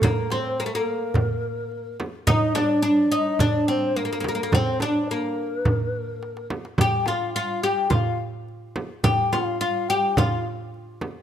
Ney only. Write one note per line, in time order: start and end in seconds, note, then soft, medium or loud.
0.04 0.33 A#4 medium
0.31 0.61 C5 medium
0.59 0.73 A#4 medium
0.75 1.96 A#4 medium
2.27 2.58 D#5 medium
2.56 2.83 D5 medium
2.84 3.14 D5 medium
3.13 3.42 D#5 medium
3.40 3.68 D5 medium
3.68 3.98 C5 medium
3.96 4.55 A#4 medium
4.54 4.81 C5 medium
4.81 5.08 D5 medium
5.10 5.59 A#4 medium
5.59 5.72 B4 medium
5.72 5.86 A#4 medium
5.86 5.99 B4 medium
5.99 6.46 A#4 medium
6.79 7.08 G5 medium
7.07 7.34 F5 medium
7.35 7.61 F5 medium
7.64 7.90 G5 medium
7.93 8.18 F5 medium
9.04 9.35 G5 medium
9.33 9.61 F5 medium
9.62 9.90 F5 medium
9.89 10.18 G5 medium
10.17 10.45 F5 medium